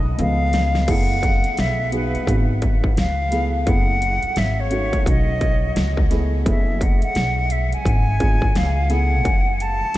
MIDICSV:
0, 0, Header, 1, 6, 480
1, 0, Start_track
1, 0, Tempo, 697674
1, 605, Time_signature, 4, 2, 24, 8
1, 6863, End_track
2, 0, Start_track
2, 0, Title_t, "Flute"
2, 0, Program_c, 0, 73
2, 140, Note_on_c, 0, 77, 112
2, 623, Note_on_c, 0, 78, 107
2, 633, Note_off_c, 0, 77, 0
2, 1100, Note_on_c, 0, 76, 97
2, 1111, Note_off_c, 0, 78, 0
2, 1333, Note_off_c, 0, 76, 0
2, 1343, Note_on_c, 0, 71, 79
2, 1787, Note_off_c, 0, 71, 0
2, 2056, Note_on_c, 0, 77, 102
2, 2466, Note_off_c, 0, 77, 0
2, 2503, Note_on_c, 0, 77, 78
2, 2533, Note_on_c, 0, 78, 108
2, 2543, Note_off_c, 0, 77, 0
2, 3015, Note_on_c, 0, 76, 98
2, 3025, Note_off_c, 0, 78, 0
2, 3164, Note_on_c, 0, 73, 95
2, 3175, Note_off_c, 0, 76, 0
2, 3491, Note_off_c, 0, 73, 0
2, 3500, Note_on_c, 0, 75, 96
2, 4186, Note_off_c, 0, 75, 0
2, 4458, Note_on_c, 0, 76, 77
2, 4698, Note_on_c, 0, 78, 73
2, 4709, Note_off_c, 0, 76, 0
2, 4837, Note_off_c, 0, 78, 0
2, 4841, Note_on_c, 0, 78, 89
2, 5172, Note_on_c, 0, 76, 79
2, 5182, Note_off_c, 0, 78, 0
2, 5325, Note_on_c, 0, 80, 99
2, 5336, Note_off_c, 0, 76, 0
2, 5899, Note_on_c, 0, 77, 93
2, 5909, Note_off_c, 0, 80, 0
2, 6141, Note_on_c, 0, 78, 103
2, 6151, Note_off_c, 0, 77, 0
2, 6615, Note_on_c, 0, 81, 116
2, 6625, Note_off_c, 0, 78, 0
2, 6863, Note_off_c, 0, 81, 0
2, 6863, End_track
3, 0, Start_track
3, 0, Title_t, "Upright piano"
3, 0, Program_c, 1, 0
3, 0, Note_on_c, 1, 75, 98
3, 124, Note_on_c, 1, 53, 58
3, 129, Note_on_c, 1, 57, 52
3, 132, Note_on_c, 1, 59, 65
3, 261, Note_off_c, 1, 75, 0
3, 581, Note_off_c, 1, 53, 0
3, 583, Note_off_c, 1, 57, 0
3, 585, Note_off_c, 1, 59, 0
3, 603, Note_on_c, 1, 57, 70
3, 605, Note_on_c, 1, 59, 63
3, 609, Note_on_c, 1, 64, 65
3, 612, Note_on_c, 1, 68, 78
3, 1288, Note_off_c, 1, 57, 0
3, 1289, Note_off_c, 1, 59, 0
3, 1290, Note_off_c, 1, 64, 0
3, 1292, Note_off_c, 1, 68, 0
3, 1317, Note_on_c, 1, 59, 64
3, 1320, Note_on_c, 1, 63, 61
3, 1323, Note_on_c, 1, 66, 60
3, 1329, Note_on_c, 1, 68, 70
3, 1549, Note_off_c, 1, 59, 0
3, 1550, Note_off_c, 1, 63, 0
3, 1555, Note_off_c, 1, 66, 0
3, 1557, Note_off_c, 1, 68, 0
3, 1559, Note_on_c, 1, 59, 59
3, 1561, Note_on_c, 1, 63, 59
3, 1565, Note_on_c, 1, 66, 57
3, 1567, Note_on_c, 1, 68, 69
3, 1862, Note_off_c, 1, 59, 0
3, 1862, Note_off_c, 1, 63, 0
3, 1865, Note_off_c, 1, 66, 0
3, 1866, Note_off_c, 1, 68, 0
3, 2276, Note_on_c, 1, 57, 60
3, 2282, Note_on_c, 1, 59, 57
3, 2284, Note_on_c, 1, 64, 50
3, 2287, Note_on_c, 1, 68, 66
3, 2507, Note_off_c, 1, 57, 0
3, 2511, Note_off_c, 1, 59, 0
3, 2513, Note_off_c, 1, 64, 0
3, 2516, Note_off_c, 1, 68, 0
3, 2517, Note_on_c, 1, 57, 70
3, 2521, Note_on_c, 1, 59, 59
3, 2523, Note_on_c, 1, 64, 63
3, 2526, Note_on_c, 1, 68, 71
3, 2706, Note_off_c, 1, 57, 0
3, 2708, Note_off_c, 1, 59, 0
3, 2709, Note_off_c, 1, 64, 0
3, 2711, Note_off_c, 1, 68, 0
3, 3235, Note_on_c, 1, 57, 69
3, 3238, Note_on_c, 1, 61, 64
3, 3243, Note_on_c, 1, 63, 64
3, 3245, Note_on_c, 1, 66, 79
3, 3465, Note_off_c, 1, 57, 0
3, 3468, Note_off_c, 1, 61, 0
3, 3471, Note_off_c, 1, 63, 0
3, 3475, Note_on_c, 1, 57, 63
3, 3476, Note_off_c, 1, 66, 0
3, 3478, Note_on_c, 1, 61, 57
3, 3481, Note_on_c, 1, 63, 52
3, 3487, Note_on_c, 1, 66, 65
3, 3780, Note_off_c, 1, 57, 0
3, 3781, Note_off_c, 1, 61, 0
3, 3783, Note_off_c, 1, 63, 0
3, 3785, Note_off_c, 1, 66, 0
3, 4197, Note_on_c, 1, 57, 66
3, 4202, Note_on_c, 1, 59, 69
3, 4204, Note_on_c, 1, 64, 63
3, 4208, Note_on_c, 1, 68, 83
3, 4430, Note_off_c, 1, 57, 0
3, 4434, Note_off_c, 1, 59, 0
3, 4437, Note_off_c, 1, 64, 0
3, 4439, Note_off_c, 1, 68, 0
3, 4440, Note_on_c, 1, 57, 65
3, 4444, Note_on_c, 1, 59, 59
3, 4447, Note_on_c, 1, 64, 60
3, 4450, Note_on_c, 1, 68, 74
3, 4742, Note_off_c, 1, 57, 0
3, 4744, Note_off_c, 1, 59, 0
3, 4746, Note_off_c, 1, 64, 0
3, 4747, Note_off_c, 1, 68, 0
3, 5639, Note_on_c, 1, 59, 59
3, 5643, Note_on_c, 1, 62, 52
3, 5645, Note_on_c, 1, 65, 57
3, 5649, Note_on_c, 1, 68, 65
3, 5827, Note_off_c, 1, 59, 0
3, 5829, Note_off_c, 1, 62, 0
3, 5830, Note_off_c, 1, 65, 0
3, 5832, Note_off_c, 1, 68, 0
3, 6118, Note_on_c, 1, 57, 61
3, 6121, Note_on_c, 1, 59, 53
3, 6125, Note_on_c, 1, 64, 59
3, 6129, Note_on_c, 1, 68, 69
3, 6362, Note_off_c, 1, 57, 0
3, 6364, Note_off_c, 1, 59, 0
3, 6365, Note_off_c, 1, 64, 0
3, 6367, Note_off_c, 1, 68, 0
3, 6863, End_track
4, 0, Start_track
4, 0, Title_t, "Upright bass"
4, 0, Program_c, 2, 32
4, 0, Note_on_c, 2, 35, 100
4, 101, Note_off_c, 2, 35, 0
4, 129, Note_on_c, 2, 37, 117
4, 583, Note_off_c, 2, 37, 0
4, 605, Note_on_c, 2, 30, 100
4, 974, Note_off_c, 2, 30, 0
4, 1089, Note_on_c, 2, 35, 87
4, 1456, Note_off_c, 2, 35, 0
4, 1563, Note_on_c, 2, 32, 105
4, 2021, Note_off_c, 2, 32, 0
4, 2045, Note_on_c, 2, 37, 97
4, 2502, Note_off_c, 2, 37, 0
4, 2524, Note_on_c, 2, 30, 112
4, 2893, Note_off_c, 2, 30, 0
4, 3005, Note_on_c, 2, 32, 96
4, 3374, Note_off_c, 2, 32, 0
4, 3483, Note_on_c, 2, 35, 104
4, 3940, Note_off_c, 2, 35, 0
4, 3963, Note_on_c, 2, 37, 101
4, 4420, Note_off_c, 2, 37, 0
4, 4445, Note_on_c, 2, 30, 102
4, 4814, Note_off_c, 2, 30, 0
4, 4925, Note_on_c, 2, 35, 96
4, 5294, Note_off_c, 2, 35, 0
4, 5404, Note_on_c, 2, 32, 108
4, 5861, Note_off_c, 2, 32, 0
4, 5884, Note_on_c, 2, 37, 103
4, 6365, Note_off_c, 2, 37, 0
4, 6365, Note_on_c, 2, 30, 101
4, 6734, Note_off_c, 2, 30, 0
4, 6863, End_track
5, 0, Start_track
5, 0, Title_t, "Muted upright bass strokes"
5, 993, Note_on_c, 9, 29, 47
5, 1062, Note_off_c, 9, 29, 0
5, 1475, Note_on_c, 9, 29, 44
5, 1544, Note_off_c, 9, 29, 0
5, 2912, Note_on_c, 9, 29, 46
5, 2981, Note_off_c, 9, 29, 0
5, 3391, Note_on_c, 9, 29, 45
5, 3460, Note_off_c, 9, 29, 0
5, 4833, Note_on_c, 9, 29, 46
5, 4902, Note_off_c, 9, 29, 0
5, 5314, Note_on_c, 9, 29, 44
5, 5383, Note_off_c, 9, 29, 0
5, 6750, Note_on_c, 9, 29, 47
5, 6819, Note_off_c, 9, 29, 0
5, 6863, End_track
6, 0, Start_track
6, 0, Title_t, "Drums"
6, 128, Note_on_c, 9, 42, 83
6, 196, Note_off_c, 9, 42, 0
6, 364, Note_on_c, 9, 42, 87
6, 371, Note_on_c, 9, 38, 95
6, 433, Note_off_c, 9, 42, 0
6, 439, Note_off_c, 9, 38, 0
6, 516, Note_on_c, 9, 38, 86
6, 585, Note_off_c, 9, 38, 0
6, 604, Note_on_c, 9, 49, 97
6, 605, Note_on_c, 9, 36, 97
6, 605, Note_on_c, 9, 42, 90
6, 673, Note_off_c, 9, 49, 0
6, 674, Note_off_c, 9, 36, 0
6, 674, Note_off_c, 9, 42, 0
6, 844, Note_on_c, 9, 36, 88
6, 848, Note_on_c, 9, 42, 82
6, 913, Note_off_c, 9, 36, 0
6, 916, Note_off_c, 9, 42, 0
6, 990, Note_on_c, 9, 42, 45
6, 1059, Note_off_c, 9, 42, 0
6, 1083, Note_on_c, 9, 42, 91
6, 1091, Note_on_c, 9, 38, 97
6, 1151, Note_off_c, 9, 42, 0
6, 1160, Note_off_c, 9, 38, 0
6, 1323, Note_on_c, 9, 42, 72
6, 1392, Note_off_c, 9, 42, 0
6, 1478, Note_on_c, 9, 42, 47
6, 1547, Note_off_c, 9, 42, 0
6, 1564, Note_on_c, 9, 36, 91
6, 1572, Note_on_c, 9, 42, 104
6, 1633, Note_off_c, 9, 36, 0
6, 1640, Note_off_c, 9, 42, 0
6, 1802, Note_on_c, 9, 42, 66
6, 1804, Note_on_c, 9, 36, 85
6, 1871, Note_off_c, 9, 42, 0
6, 1872, Note_off_c, 9, 36, 0
6, 1952, Note_on_c, 9, 36, 80
6, 2021, Note_off_c, 9, 36, 0
6, 2045, Note_on_c, 9, 42, 77
6, 2050, Note_on_c, 9, 38, 113
6, 2114, Note_off_c, 9, 42, 0
6, 2119, Note_off_c, 9, 38, 0
6, 2283, Note_on_c, 9, 42, 84
6, 2284, Note_on_c, 9, 38, 38
6, 2352, Note_off_c, 9, 42, 0
6, 2353, Note_off_c, 9, 38, 0
6, 2523, Note_on_c, 9, 36, 100
6, 2523, Note_on_c, 9, 42, 82
6, 2592, Note_off_c, 9, 36, 0
6, 2592, Note_off_c, 9, 42, 0
6, 2765, Note_on_c, 9, 42, 76
6, 2834, Note_off_c, 9, 42, 0
6, 2907, Note_on_c, 9, 42, 49
6, 2976, Note_off_c, 9, 42, 0
6, 2999, Note_on_c, 9, 42, 84
6, 3007, Note_on_c, 9, 38, 106
6, 3068, Note_off_c, 9, 42, 0
6, 3076, Note_off_c, 9, 38, 0
6, 3239, Note_on_c, 9, 42, 70
6, 3307, Note_off_c, 9, 42, 0
6, 3391, Note_on_c, 9, 36, 79
6, 3393, Note_on_c, 9, 42, 47
6, 3460, Note_off_c, 9, 36, 0
6, 3461, Note_off_c, 9, 42, 0
6, 3483, Note_on_c, 9, 36, 97
6, 3489, Note_on_c, 9, 42, 99
6, 3552, Note_off_c, 9, 36, 0
6, 3558, Note_off_c, 9, 42, 0
6, 3722, Note_on_c, 9, 42, 66
6, 3723, Note_on_c, 9, 36, 89
6, 3791, Note_off_c, 9, 42, 0
6, 3792, Note_off_c, 9, 36, 0
6, 3964, Note_on_c, 9, 42, 84
6, 3969, Note_on_c, 9, 38, 112
6, 4033, Note_off_c, 9, 42, 0
6, 4037, Note_off_c, 9, 38, 0
6, 4110, Note_on_c, 9, 36, 84
6, 4179, Note_off_c, 9, 36, 0
6, 4203, Note_on_c, 9, 42, 77
6, 4204, Note_on_c, 9, 38, 38
6, 4271, Note_off_c, 9, 42, 0
6, 4273, Note_off_c, 9, 38, 0
6, 4445, Note_on_c, 9, 36, 99
6, 4446, Note_on_c, 9, 42, 90
6, 4513, Note_off_c, 9, 36, 0
6, 4515, Note_off_c, 9, 42, 0
6, 4684, Note_on_c, 9, 36, 89
6, 4688, Note_on_c, 9, 42, 78
6, 4753, Note_off_c, 9, 36, 0
6, 4757, Note_off_c, 9, 42, 0
6, 4830, Note_on_c, 9, 42, 45
6, 4898, Note_off_c, 9, 42, 0
6, 4920, Note_on_c, 9, 42, 90
6, 4929, Note_on_c, 9, 38, 105
6, 4989, Note_off_c, 9, 42, 0
6, 4997, Note_off_c, 9, 38, 0
6, 5160, Note_on_c, 9, 42, 76
6, 5229, Note_off_c, 9, 42, 0
6, 5315, Note_on_c, 9, 42, 50
6, 5383, Note_off_c, 9, 42, 0
6, 5404, Note_on_c, 9, 36, 91
6, 5411, Note_on_c, 9, 42, 93
6, 5472, Note_off_c, 9, 36, 0
6, 5479, Note_off_c, 9, 42, 0
6, 5643, Note_on_c, 9, 42, 67
6, 5644, Note_on_c, 9, 36, 88
6, 5712, Note_off_c, 9, 42, 0
6, 5713, Note_off_c, 9, 36, 0
6, 5792, Note_on_c, 9, 36, 84
6, 5860, Note_off_c, 9, 36, 0
6, 5885, Note_on_c, 9, 42, 88
6, 5890, Note_on_c, 9, 38, 104
6, 5954, Note_off_c, 9, 42, 0
6, 5958, Note_off_c, 9, 38, 0
6, 6121, Note_on_c, 9, 42, 81
6, 6123, Note_on_c, 9, 38, 41
6, 6190, Note_off_c, 9, 42, 0
6, 6191, Note_off_c, 9, 38, 0
6, 6365, Note_on_c, 9, 36, 105
6, 6365, Note_on_c, 9, 42, 85
6, 6433, Note_off_c, 9, 36, 0
6, 6434, Note_off_c, 9, 42, 0
6, 6607, Note_on_c, 9, 42, 76
6, 6676, Note_off_c, 9, 42, 0
6, 6841, Note_on_c, 9, 42, 84
6, 6863, Note_off_c, 9, 42, 0
6, 6863, End_track
0, 0, End_of_file